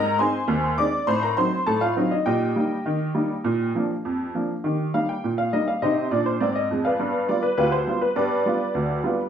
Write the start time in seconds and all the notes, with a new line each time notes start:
Already playing: G#2 A#4 D#5 A#5
0.19 G#3 C4 D#4 C5 G#5 C6
0.48 D#2
0.78 G#3 C4 D#4 D5 D6
1.07 A2 C5 C6
1.23 A#4 A#5
1.37 F#3 C4 D#4 C5 C6
1.67 A2 A4 A5
1.81 F4 F5
1.97 F#3 C4 D#4
2.11 D#4 D#5
2.26 A#2 G4 D#5 G5
2.56 G3 A#3 D#4
2.86 D#3
3.15 G3 A#3 D#4
3.44 A#2
3.75 F3 A#3 D4
4.05 F2
4.35 F3 A#3 D4
4.64 D#3 G4
4.94 G3 A#3 D#4 F5
5.09 G5
5.24 A#2
5.38 F5
5.53 G3 A#3 D#4 D#5
5.68 F5
5.82 C3 D#4 G4 C5 D#5
6.11 A#2 D4 D5
6.26 C5
6.40 G#2 C4 D5
6.55 D#5
6.71 F2 G#3
6.85 B4 D5 F5
7.00 G2 B3
7.29 G3 B3 F4 D5
7.43 B4
7.58 D2 F4 G4 B4
7.72 C5
7.87 G3 B3 F4
8.01 B4
8.16 G2 B3 G4 B4 D5
8.46 G3 B3 F4
8.75 D2
9.04 G3 B3 F4